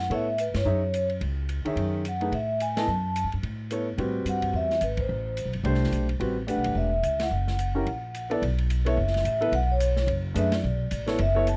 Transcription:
0.00 0.12 F#5 medium
0.10 0.51 A2 medium
0.10 0.25 B3 medium
0.10 0.26 E4 medium
0.10 0.26 A4 medium
0.10 0.26 C#5 medium
0.10 0.40 E5 medium
0.10 ride soft
0.38 0.55 B4 medium
0.38 hi-hat pedal soft
0.38 ride soft
0.54 0.65 G2 medium
0.54 1.07 C#5 medium
0.54 snare medium
0.54 ride medium
0.65 1.18 F#2 medium
0.65 0.80 D#4 medium
0.65 0.81 G#4 soft
0.65 0.81 C#5 medium
0.65 0.81 E5 medium
0.94 hi-hat pedal medium
0.94 ride medium
1.10 ride soft
1.21 1.62 C#2 medium
1.21 ride medium
1.49 hi-hat pedal soft
1.49 ride medium
1.65 2.02 D#3 medium
1.65 2.02 G#4 medium
1.65 2.03 C#5 medium
1.65 2.03 E5 medium
1.65 muted upright bass stroke soft
1.65 ride soft
1.76 2.29 F#2 medium
1.76 ride soft
2.05 2.35 F#5 medium
2.05 hi-hat pedal soft
2.05 ride medium
2.21 2.31 A3 medium
2.21 2.31 D#4 soft
2.21 2.31 G#4 soft
2.21 2.31 B4 medium
2.21 ride soft
2.32 2.85 A2 medium
2.32 2.59 E5 medium
2.32 ride soft
2.60 2.76 G#5 medium
2.60 hi-hat pedal soft
2.60 ride medium
2.76 2.86 B3 medium
2.76 2.87 E4 medium
2.76 2.87 A4 medium
2.76 2.87 D#5 medium
2.76 3.28 A5 medium
2.76 snare medium
2.76 ride medium
2.87 3.22 F#2 medium
3.16 hi-hat pedal soft
3.16 ride medium
3.24 3.33 G#2 medium
3.32 3.42 G2 medium
3.32 ride soft
3.43 3.95 A2 medium
3.43 ride soft
3.71 3.85 B3 medium
3.71 3.86 E4 soft
3.71 3.86 A4 soft
3.71 3.86 C#5 medium
3.71 hi-hat pedal soft
3.71 ride soft
3.98 4.24 A2 medium
3.98 4.75 G3 medium
3.98 4.75 C4 medium
3.98 4.75 F#4 soft
3.98 4.75 B4 medium
3.98 ride soft
4.25 4.51 G2 medium
4.25 hi-hat pedal medium
4.25 ride soft
4.29 4.56 F#5 medium
4.42 kick soft
4.42 ride medium
4.53 4.79 E2 medium
4.53 4.81 E5 medium
4.70 snare soft
4.81 5.07 G#1 medium
4.81 4.99 B4 medium
4.81 hi-hat pedal soft
4.81 ride medium
4.97 5.50 C5 medium
4.97 kick medium
4.97 ride medium
5.09 5.43 A1 medium
5.37 hi-hat pedal soft
5.37 ride medium
5.45 5.54 B1 medium
5.53 5.63 G1 medium
5.53 ride soft
5.64 5.90 C2 medium
5.64 6.05 A3 medium
5.64 6.05 D4 medium
5.64 6.06 G4 medium
5.64 6.06 C5 medium
5.64 ride soft
5.74 snare soft
5.84 snare soft
5.92 6.18 B1 medium
5.92 hi-hat pedal soft
5.92 ride soft
6.09 ride soft
6.20 6.54 A1 medium
6.20 6.34 G3 medium
6.20 6.35 C4 medium
6.20 6.35 F#4 medium
6.20 6.35 B4 medium
6.20 ride medium
6.47 6.88 A3 medium
6.47 6.88 D4 medium
6.47 6.89 G4 soft
6.47 6.89 B4 medium
6.47 6.74 F#5 medium
6.47 hi-hat pedal medium
6.47 ride medium
6.56 6.65 B1 soft
6.64 6.74 G#1 medium
6.64 ride medium
6.75 7.01 E1 medium
6.75 7.02 E5 medium
7.03 7.28 C#2 medium
7.03 7.19 E5 medium
7.03 hi-hat pedal soft
7.03 ride soft
7.20 8.27 F#5 medium
7.20 snare medium
7.20 ride medium
7.31 7.83 F#1 medium
7.47 snare soft
7.59 hi-hat pedal medium
7.59 ride medium
7.75 7.85 C#4 medium
7.75 7.85 E4 medium
7.75 7.85 G4 medium
7.75 7.85 A#4 medium
7.86 8.39 A#1 medium
7.86 ride soft
8.15 hi-hat pedal soft
8.15 ride soft
8.30 8.40 B3 medium
8.30 8.40 E4 medium
8.30 8.41 A4 medium
8.30 8.41 D5 medium
8.30 ride soft
8.42 8.94 B1 medium
8.42 ride medium
8.58 ride soft
8.70 hi-hat pedal soft
8.70 ride medium
8.85 8.95 B3 medium
8.85 8.96 E4 medium
8.85 8.96 A4 medium
8.85 8.96 C#5 medium
8.85 9.25 E5 medium
8.85 ride medium
8.97 9.23 F#1 medium
9.07 snare soft
9.14 snare soft
9.14 ride soft
9.25 9.50 A1 medium
9.25 9.51 E5 medium
9.25 hi-hat pedal soft
9.25 ride medium
9.41 9.51 B3 medium
9.41 9.51 E4 medium
9.41 9.51 A4 medium
9.41 9.51 B4 medium
9.41 ride soft
9.52 10.05 B1 medium
9.52 9.69 F#5 loud
9.52 ride medium
9.72 10.06 C#5 medium
9.80 hi-hat pedal medium
9.80 ride medium
9.97 snare medium
10.07 10.33 F#1 medium
10.07 ride medium
10.34 10.61 F#2 medium
10.34 10.50 A3 medium
10.34 10.50 D4 medium
10.34 10.50 G#4 medium
10.34 10.50 B4 medium
10.34 10.52 E5 medium
10.34 hi-hat pedal soft
10.34 ride medium
10.52 11.22 D5 medium
10.52 snare medium
10.52 ride medium
10.63 10.89 B1 medium
10.91 11.17 A1 medium
10.91 hi-hat pedal medium
10.91 ride medium
11.07 11.17 B3 medium
11.07 11.17 E4 medium
11.07 11.18 A4 medium
11.07 11.18 C#5 medium
11.07 snare medium
11.07 ride soft
11.19 11.57 F#1 medium
11.19 11.46 E5 loud
11.19 ride medium
11.35 11.45 B3 medium
11.35 11.45 E4 medium
11.35 11.46 A4 medium
11.35 11.46 C#5 medium
11.47 11.57 A5 medium
11.47 hi-hat pedal medium
11.47 ride medium

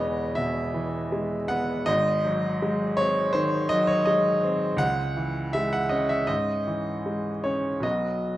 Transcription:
0.00 0.32 E1 medium
0.00 0.33 E2 medium
0.00 0.74 E3 medium
0.00 0.22 G#3 medium
0.00 0.59 B3 medium
0.00 1.90 C#5 loud
0.00 0.36 D#5 loud
0.35 0.97 B2 medium
0.35 1.49 E5 loud
0.74 1.35 E3 medium
1.12 1.72 G#3 medium
1.48 1.87 B3 medium
1.48 1.86 F#5 loud
1.86 3.30 G#1 medium
1.86 3.31 G#2 medium
1.86 2.97 D#5 loud
2.25 2.84 F#3 medium
2.62 3.20 G#3 medium
2.97 3.56 C4 medium
2.97 3.34 C#5 loud
3.33 3.92 D#3 medium
3.33 3.69 C5 loud
3.69 4.28 F#3 medium
3.69 3.88 D#5 loud
3.87 4.06 C#5 loud
4.05 4.65 G#3 medium
4.05 4.42 D#5 medium
4.44 4.80 C4 medium
4.77 6.24 C#2 medium
4.77 5.53 F#5 loud
5.17 5.77 E3 medium
5.53 6.15 G#3 medium
5.53 5.72 E5 loud
5.73 5.92 F#5 loud
5.89 6.52 C#4 medium
5.89 6.09 D#5 medium
6.09 6.29 E5 medium
6.27 6.90 G#2 medium
6.27 7.43 D#5 loud
6.67 7.28 E3 medium
7.06 7.68 G#3 soft
7.44 7.84 C#4 medium
7.44 7.84 C#5 medium
7.80 8.37 B1 medium
7.80 8.37 F#3 soft
7.80 8.37 B3 soft
7.80 8.37 F#4 soft
7.80 8.37 D#5 medium

